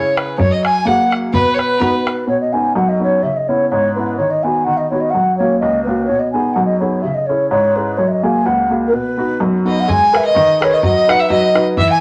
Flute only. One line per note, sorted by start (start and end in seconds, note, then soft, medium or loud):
0.00 0.19 C#5 medium
0.17 0.39 B4 medium
0.38 0.51 C#5 loud
0.52 0.66 D#5 medium
0.65 0.87 G#5 medium
0.87 1.11 F#5 medium
1.33 2.03 B4 loud
2.07 2.27 B4 medium
2.28 2.40 C#5 medium
2.41 2.54 D#5 medium
2.53 2.75 G#5 medium
2.76 2.90 F#5 medium
2.88 3.02 D#5 medium
3.03 3.24 C#5 medium
3.23 3.38 E5 medium
3.36 3.49 D#5 medium
3.48 3.68 C#5 medium
3.69 3.94 C#5 medium
3.95 4.16 B4 medium
4.17 4.32 C#5 medium
4.30 4.45 D#5 medium
4.43 4.66 G#5 medium
4.64 4.79 F#5 medium
4.77 4.90 D#5 medium
4.90 5.02 C#5 medium
5.00 5.12 D#5 medium
5.10 5.37 F#5 medium
5.37 5.58 C#5 medium
5.59 5.83 D#5 medium
5.84 6.05 B4 medium
6.06 6.21 C#5 medium
6.19 6.31 D#5 medium
6.32 6.55 G#5 medium
6.53 6.65 F#5 medium
6.65 6.79 D#5 medium
6.79 7.03 C#5 medium
7.02 7.16 E5 medium
7.14 7.28 D#5 medium
7.26 7.49 C#5 medium
7.50 7.77 C#5 medium
7.76 7.99 B4 medium
7.97 8.09 C#5 medium
8.08 8.25 D#5 medium
8.08 8.12 E5 soft
8.23 8.47 G#5 medium
8.46 8.72 F#5 medium
8.87 8.95 A#4 medium
8.93 9.42 B4 loud
9.68 9.81 D#5 medium
9.80 9.90 F#5 medium
9.91 10.18 G#5 medium
10.16 10.25 E5 medium
10.26 10.59 D#5 medium
10.63 10.75 C#5 medium
10.74 10.84 D#5 medium
10.85 11.11 D#5 loud
11.10 11.22 F#5 loud
11.21 11.30 E5 medium
11.30 11.64 D#5 loud
11.78 11.92 E5 loud
11.91 12.01 G#5 medium